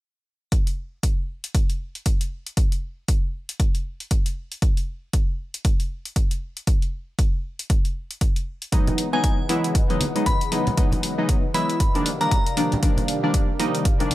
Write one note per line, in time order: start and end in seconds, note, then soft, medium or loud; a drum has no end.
0.52 kick loud
0.52 closed hi-hat medium
0.67 closed hi-hat soft
1.03 kick loud
1.03 closed hi-hat medium
1.44 closed hi-hat medium
1.55 kick loud
1.55 closed hi-hat medium
1.70 closed hi-hat soft
1.95 closed hi-hat soft
2.06 kick loud
2.06 closed hi-hat medium
2.21 closed hi-hat soft
2.47 closed hi-hat soft
2.57 kick loud
2.57 closed hi-hat medium
2.72 closed hi-hat soft
3.08 kick loud
3.08 closed hi-hat medium
3.49 closed hi-hat soft
3.60 kick loud
3.60 closed hi-hat medium
3.75 closed hi-hat soft
4.00 closed hi-hat soft
4.11 kick loud
4.11 closed hi-hat medium
4.26 closed hi-hat soft
4.52 closed hi-hat soft
4.62 kick loud
4.62 closed hi-hat medium
4.77 closed hi-hat soft
5.13 kick loud
5.13 closed hi-hat medium
5.54 closed hi-hat medium
5.65 kick loud
5.65 closed hi-hat medium
5.80 closed hi-hat soft
6.05 closed hi-hat soft
6.16 kick loud
6.16 closed hi-hat medium
6.31 closed hi-hat soft
6.57 closed hi-hat soft
6.67 kick loud
6.67 closed hi-hat medium
6.82 closed hi-hat soft
7.19 kick loud
7.19 closed hi-hat medium
7.59 closed hi-hat soft
7.70 kick loud
7.70 closed hi-hat medium
7.85 closed hi-hat soft
8.11 closed hi-hat soft
8.21 kick loud
8.21 closed hi-hat medium
8.36 closed hi-hat soft
8.62 closed hi-hat soft
8.72 11.77 C#3 medium
8.72 9.09 E3 medium
8.72 11.77 E3 medium
8.72 9.09 F#3 medium
8.72 9.10 G#3 medium
8.72 9.10 B3 medium
8.72 9.10 D#4 medium
8.72 11.77 G#4 medium
8.72 11.77 B4 medium
8.72 11.77 D#5 medium
8.72 11.77 F#5 medium
8.72 kick loud
8.72 closed hi-hat medium
8.87 closed hi-hat soft
8.87 low conga medium
8.98 open hi-hat loud
9.13 9.39 E3 medium
9.13 9.39 F#3 medium
9.13 9.39 G#3 medium
9.13 9.39 B3 medium
9.13 9.39 D#4 medium
9.13 9.27 G#5 medium
9.24 kick loud
9.24 closed hi-hat medium
9.49 9.75 E3 medium
9.49 9.75 F#3 medium
9.49 9.75 G#3 medium
9.49 9.75 B3 medium
9.49 9.75 E4 loud
9.49 open hi-hat medium
9.64 closed hi-hat soft
9.75 kick loud
9.75 closed hi-hat medium
9.90 10.04 E3 medium
9.90 10.04 F#3 medium
9.90 10.05 G#3 medium
9.90 10.05 B3 medium
9.90 10.05 D#4 medium
9.90 closed hi-hat soft
10.01 open hi-hat loud
10.01 high conga medium
10.15 10.30 E3 medium
10.15 10.30 F#3 medium
10.15 10.30 G#3 medium
10.15 10.30 B3 medium
10.15 10.30 D#4 medium
10.15 closed hi-hat soft
10.26 10.43 B5 medium
10.26 kick loud
10.26 closed hi-hat medium
10.26 low conga medium
10.41 closed hi-hat soft
10.52 10.70 E3 medium
10.52 10.70 F#3 medium
10.52 10.70 G#3 medium
10.52 10.70 B3 medium
10.52 10.70 D#4 medium
10.52 open hi-hat medium
10.67 closed hi-hat soft
10.67 low conga medium
10.77 11.14 E3 medium
10.77 11.15 F#3 medium
10.77 11.15 G#3 medium
10.77 11.15 B3 medium
10.77 11.15 D#4 medium
10.77 kick loud
10.77 closed hi-hat medium
10.92 closed hi-hat soft
10.92 low conga medium
11.03 open hi-hat loud
11.18 11.44 E3 medium
11.18 11.44 F#3 medium
11.18 11.44 G#3 medium
11.18 11.44 B3 medium
11.18 11.44 D#4 medium
11.29 kick loud
11.29 closed hi-hat medium
11.54 11.79 E3 medium
11.54 11.79 F#3 medium
11.54 11.79 G#3 medium
11.54 11.79 B3 medium
11.54 11.79 E4 loud
11.54 11.72 B5 medium
11.54 open hi-hat medium
11.70 closed hi-hat medium
11.80 14.14 C3 medium
11.80 14.14 D4 medium
11.80 14.14 G4 medium
11.80 14.14 A#4 medium
11.80 14.14 D5 medium
11.80 14.14 F5 medium
11.80 kick loud
11.80 closed hi-hat medium
11.95 12.09 D#3 medium
11.95 12.10 F3 medium
11.95 12.10 G3 medium
11.95 12.10 A#3 medium
11.95 12.10 D4 loud
11.95 closed hi-hat soft
12.06 open hi-hat loud
12.21 12.35 D#3 medium
12.21 12.35 F3 medium
12.21 12.35 G3 medium
12.21 12.35 A#3 medium
12.21 12.36 D4 medium
12.21 12.28 A#5 medium
12.21 closed hi-hat soft
12.31 12.41 A#5 medium
12.31 kick loud
12.31 closed hi-hat medium
12.31 low conga medium
12.46 closed hi-hat soft
12.57 12.75 D#3 medium
12.57 12.75 F3 medium
12.57 12.75 G3 medium
12.57 12.75 A#3 medium
12.57 12.75 D4 medium
12.57 open hi-hat medium
12.72 closed hi-hat soft
12.72 low conga medium
12.82 13.20 D#3 medium
12.82 13.20 F3 medium
12.82 13.20 G3 medium
12.82 13.20 A#3 medium
12.82 13.20 D4 medium
12.82 kick loud
12.82 closed hi-hat medium
12.97 closed hi-hat soft
12.97 low conga medium
13.08 open hi-hat loud
13.23 13.49 D#3 medium
13.23 13.49 F3 medium
13.23 13.49 G3 medium
13.23 13.49 A#3 medium
13.23 13.49 D4 loud
13.34 kick loud
13.34 closed hi-hat medium
13.59 13.85 D#3 medium
13.59 13.85 F3 medium
13.59 13.85 G3 medium
13.59 13.86 A#3 medium
13.59 13.86 D#4 loud
13.59 open hi-hat medium
13.75 closed hi-hat medium
13.85 kick loud
13.85 closed hi-hat medium
14.00 14.14 D#3 medium
14.00 14.14 F3 medium
14.00 14.14 G3 medium
14.00 14.14 A#3 medium
14.00 14.14 D4 loud
14.00 closed hi-hat soft
14.11 open hi-hat loud